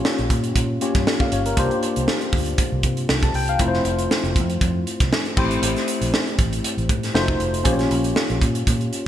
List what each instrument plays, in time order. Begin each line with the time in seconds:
Already playing: tine electric piano A#3 C#4 F4 G4 C#5
0.05 snare
0.18 fingered electric bass A#1, closed hi-hat
0.30 fingered electric bass A#2, kick, closed hi-hat
0.44 closed hi-hat
0.56 fingered electric bass A#2, kick, closed hi-hat
0.81 tine electric piano A#3 C#4 F4 G4 C#5, closed hi-hat
0.95 fingered electric bass G2, kick, snare, closed hi-hat
1.07 snare
1.20 tine electric piano F5, kick
1.32 fingered electric bass G1, tine electric piano C#5, closed hi-hat
1.46 tine electric piano A#4, closed hi-hat
1.57 fingered electric bass C2, tine electric piano A#3 D4 F4 G4 C5, kick, closed hi-hat
1.71 closed hi-hat
1.83 closed hi-hat
1.96 fingered electric bass C2, closed hi-hat
2.08 snare
2.21 closed hi-hat
2.33 fingered electric bass D2, kick, open hi-hat
2.46 closed hi-hat
2.58 kick, closed hi-hat
2.72 fingered electric bass C2
2.83 fingered electric bass C3, kick, closed hi-hat
2.97 closed hi-hat
3.09 fingered electric bass C2, snare
3.23 tine electric piano A5, kick, closed hi-hat
3.34 fingered electric bass C2, tine electric piano G5, open hi-hat
3.48 tine electric piano F5, closed hi-hat
3.59 fingered electric bass F1, tine electric piano A3 C4 E4 F4 A#4, kick, closed hi-hat
3.68 tine electric piano C5
3.74 snare
3.85 fingered electric bass F1, closed hi-hat
3.99 closed hi-hat
4.11 snare
4.23 fingered electric bass F1, closed hi-hat
4.36 fingered electric bass F2, kick, closed hi-hat
4.50 closed hi-hat
4.61 fingered electric bass F2, kick, closed hi-hat
4.87 closed hi-hat
5.00 fingered electric bass C2, kick, snare, closed hi-hat
5.13 snare
5.26 closed hi-hat
5.37 fingered electric bass A1, tine electric piano A3 C4 E4 G4 C5, kick, crash
5.51 closed hi-hat
5.62 fingered electric bass A1, closed hi-hat
5.76 snare, closed hi-hat
5.88 closed hi-hat
6.01 fingered electric bass A#1, closed hi-hat
6.14 snare
6.27 closed hi-hat
6.39 fingered electric bass A1, kick, closed hi-hat
6.53 closed hi-hat
6.64 closed hi-hat
6.77 fingered electric bass A1, closed hi-hat
6.89 fingered electric bass A2, kick, closed hi-hat
7.03 snare, closed hi-hat
7.14 fingered electric bass F1, tine electric piano A3 D#4 F4 F#4 C5, snare
7.28 kick
7.40 fingered electric bass F1, closed hi-hat
7.54 closed hi-hat
7.64 fingered electric bass A#1, tine electric piano A#3 C#4 F4 G4 C5, kick, closed hi-hat
7.73 tine electric piano C#5
7.79 snare, closed hi-hat
7.91 fingered electric bass A#1, closed hi-hat
8.04 closed hi-hat
8.16 snare
8.30 fingered electric bass A#1, closed hi-hat
8.41 fingered electric bass A#2, kick, closed hi-hat
8.55 closed hi-hat
8.67 fingered electric bass A#2, kick, closed hi-hat
8.81 closed hi-hat
8.93 closed hi-hat